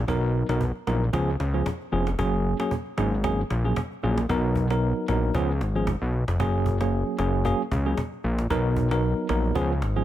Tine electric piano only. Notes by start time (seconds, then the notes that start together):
0.08 F#3 B3 D#4 A#4
0.49 F#3 B3 D#4 A#4
0.87 F#3 B3 D#4 A#4
1.13 F3 B3 C#4 G#4
1.54 F3 B3 C#4 G#4
1.92 F3 B3 C#4 G#4
2.19 F#3 A#3 C#4 G#4
2.59 F#3 A#3 C#4 G#4
2.98 F#3 A#3 C#4 G#4
3.24 F#3 A#3 C#4 G#4
3.65 F#3 A#3 C#4 G#4
4.03 F#3 A#3 C#4 G#4
4.29 F#3 B3 D#4 A#4
4.70 F#3 B3 D#4 A#4
5.08 F#3 B3 D#4 A#4
5.35 F3 B3 C#4 G#4
5.75 F3 B3 C#4 G#4
6.40 F#3 A#3 C#4 G#4
6.81 F#3 A#3 C#4 G#4
7.18 F#3 A#3 C#4 G#4
7.45 F#3 A#3 C#4 G#4
7.86 F#3 A#3 C#4 G#4
8.50 F#3 B3 D#4 A#4
8.91 F#3 B3 D#4 A#4
9.29 F#3 B3 D#4 A#4
9.55 F3 B3 C#4 G#4
9.96 F3 B3 C#4 G#4